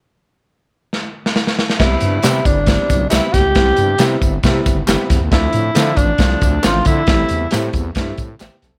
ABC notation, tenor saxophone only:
X:1
M:4/4
L:1/8
Q:1/4=136
K:C
V:1 name="Tenor saxophone"
z8 | E3 D3 E G- | G3 z4 z | E3 D3 F E- |
E3 z4 z |]